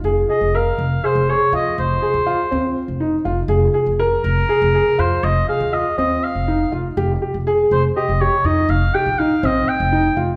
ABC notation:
X:1
M:7/8
L:1/16
Q:1/4=121
K:Fm
V:1 name="Oboe"
z2 e2 f4 c2 d2 e2 | c8 z6 | z6 B6 c2 | e2 f2 e2 e2 f4 z2 |
z6 c2 e2 d2 e2 | f2 g2 f2 e2 g4 z2 |]
V:2 name="Grand piano"
A2 A2 B4 A2 A2 F2- | F2 A2 F2 C4 E2 F2 | A2 A2 B4 A2 A2 F2- | F2 A2 F2 C4 E2 F2 |
G2 G2 A4 G2 G2 E2- | E2 G2 E2 C4 E2 F2 |]
V:3 name="Upright bass" clef=bass
F,,,2 z F,,,3 F,,,2 z F,,,2 z F,,2 | F,,,2 z E,,2 z E,,2 z F,,,3 F,,,2 | F,,,2 z F,,,3 F,,,2 z F,,,2 z F,,2 | F,,,2 z E,,2 z E,,2 z F,,,3 F,,,2 |
F,,,2 z F,,,3 F,,,2 z F,,,2 z F,,2 | F,,,2 z B,,,2 z B,,,2 z F,,,3 F,,,2 |]